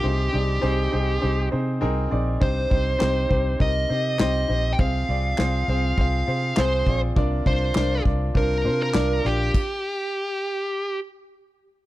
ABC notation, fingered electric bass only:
X:1
M:4/4
L:1/8
Q:1/4=101
K:Bbmix
V:1 name="Fingered electric bass" clef=bass
C,, C,, C,, C,, C,, C, C,, B,,, | C,, C,, C,, C,, C,, C, C,, B,,, | C,, C,, C,, C,, C,, C, C,, B,,, | C,, C,, C,, C,, C,, C, C,, B,,, |
z8 |]